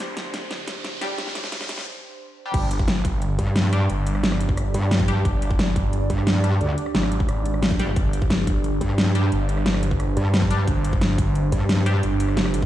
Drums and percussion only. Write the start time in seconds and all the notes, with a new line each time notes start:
0.17 snare, closed hi-hat
0.34 snare, closed hi-hat
0.51 snare, closed hi-hat
0.68 snare, closed hi-hat
0.84 snare, closed hi-hat
1.01 snare, closed hi-hat
1.18 snare, closed hi-hat
1.27 snare
1.35 snare, closed hi-hat
1.44 snare
1.52 snare, closed hi-hat
1.61 snare
1.69 snare, closed hi-hat
1.78 snare
2.54 kick, closed hi-hat, crash
2.71 closed hi-hat
2.79 kick
2.88 snare, closed hi-hat
3.05 kick, closed hi-hat
3.22 closed hi-hat
3.39 kick, closed hi-hat
3.47 cross-stick
3.56 snare, closed hi-hat
3.73 cross-stick, closed hi-hat
3.90 closed hi-hat
4.07 closed hi-hat
4.15 cross-stick
4.24 snare, closed hi-hat
4.32 cross-stick
4.41 closed hi-hat
4.49 kick
4.57 cross-stick, closed hi-hat
4.74 closed hi-hat
4.83 cross-stick
4.91 snare, closed hi-hat
5.00 kick
5.08 closed hi-hat
5.25 kick, closed hi-hat
5.42 closed hi-hat
5.51 kick
5.59 snare, closed hi-hat
5.76 kick, closed hi-hat
5.93 closed hi-hat
6.10 kick, closed hi-hat
6.18 cross-stick
6.27 snare, closed hi-hat
6.44 cross-stick, closed hi-hat
6.61 closed hi-hat
6.78 closed hi-hat
6.86 cross-stick
6.95 snare, closed hi-hat
7.03 cross-stick
7.12 closed hi-hat
7.20 kick
7.29 cross-stick, closed hi-hat
7.46 closed hi-hat
7.54 cross-stick
7.63 snare, closed hi-hat
7.71 kick
7.79 closed hi-hat
7.96 kick, closed hi-hat
8.13 closed hi-hat
8.22 kick
8.30 snare, closed hi-hat
8.47 kick, closed hi-hat
8.64 closed hi-hat
8.81 kick, closed hi-hat
8.90 cross-stick
8.98 snare, closed hi-hat
9.15 cross-stick, closed hi-hat
9.32 closed hi-hat
9.49 closed hi-hat
9.57 cross-stick
9.66 snare, closed hi-hat
9.74 cross-stick
9.83 closed hi-hat
9.91 kick
10.00 cross-stick, closed hi-hat
10.17 closed hi-hat
10.25 cross-stick
10.34 snare, closed hi-hat
10.42 kick
10.51 closed hi-hat
10.67 kick, closed hi-hat
10.85 closed hi-hat
10.93 kick
11.01 snare, closed hi-hat
11.18 kick, closed hi-hat
11.35 closed hi-hat
11.52 kick, closed hi-hat
11.61 cross-stick
11.69 snare, closed hi-hat
11.86 cross-stick, closed hi-hat
12.03 closed hi-hat
12.20 closed hi-hat
12.29 cross-stick
12.37 snare, closed hi-hat
12.45 cross-stick
12.54 closed hi-hat
12.62 kick